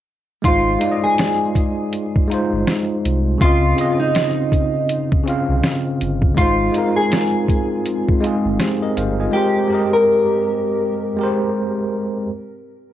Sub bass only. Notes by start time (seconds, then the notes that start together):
0.45 G#1
2.52 G1
3.05 C2
3.41 C#2
5.49 C2
6.01 G1
6.38 G#1
8.45 G1
8.97 G1